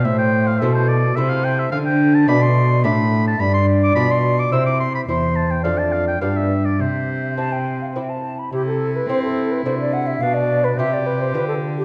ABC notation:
X:1
M:3/4
L:1/16
Q:1/4=107
K:C
V:1 name="Oboe"
e g2 f e c d2 e f g e | f g2 a b c'3 b3 a | b c'2 d' b c'2 d' e' d' c' b | c'2 a g f a f g f e2 d |
c8 z4 | E12 | D4 G8 |]
V:2 name="Flute"
c4 A4 c4- | c2 z2 d4 e4 | d8 c4 | c4 d4 d4 |
e4 a g2 f g a2 b | G A2 B c A2 B c d ^f e | f d2 B e d B c B A2 G |]
V:3 name="Lute"
z4 [A,Ec]4 [A,Ec]4 | z4 [A,Dd]4 [A,Dd]4 | z4 [Fd]4 [Ec]4 | [Ec]4 [A,DA]4 [B,DG]4 |
z4 [CEG]4 [CEG]4 | z4 [CEG]4 [A,D^F]4 | z4 [FG]4 [FG]4 |]
V:4 name="Lute" clef=bass
A,,4 B,,4 C,4 | D,4 B,,4 A,,4 | G,,4 B,,4 C,4 | E,,4 F,,4 G,,4 |
C,8- C,2 z2 | C,4 C4 C,4 | B,,4 C,4 D,4 |]
V:5 name="Cello" clef=bass
A,,4 B,,4 C,4 | D,4 B,,4 A,,4 | G,,4 B,,4 C,4 | E,,4 F,,4 G,,4 |
C,8- C,2 z2 | C,4 C4 C,4 | B,,4 C,4 D,4 |]